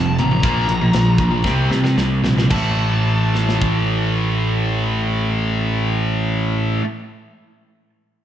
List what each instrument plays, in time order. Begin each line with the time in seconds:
Already playing: picked electric bass F1, distorted electric guitar F2 C3, lead electric guitar A5
0.19 picked electric bass A1, distorted electric guitar F2 C3, lead electric guitar A#5, closed hi-hat
0.31 distorted electric guitar F2 C3
0.43 picked electric bass A#1, distorted electric guitar A#2 F3 A#3, kick, closed hi-hat
0.68 picked electric bass A#1, distorted electric guitar A#2 F3, closed hi-hat
0.81 distorted electric guitar A#2 F3
0.93 picked electric bass A#1, distorted electric guitar A#2 F3, snare, closed hi-hat
1.18 picked electric bass A#1, distorted electric guitar A#2 F3, kick, closed hi-hat
1.31 distorted electric guitar A#2 F3
1.44 picked electric bass C2, distorted electric guitar C3 G3 C4, kick, snare
1.71 picked electric bass C3, distorted electric guitar C3 G3, snare
1.84 distorted electric guitar C3 G3, snare
1.97 picked electric bass C2, distorted electric guitar C3 G3, snare
2.24 picked electric bass A#1, distorted electric guitar C3 G3, snare
2.38 distorted electric guitar C3 G3, snare
2.50 picked electric bass A1, distorted electric guitar A2 E3, lead electric guitar A5, kick, crash
2.54 distorted electric guitar A3
3.35 snare
3.49 snare
3.62 kick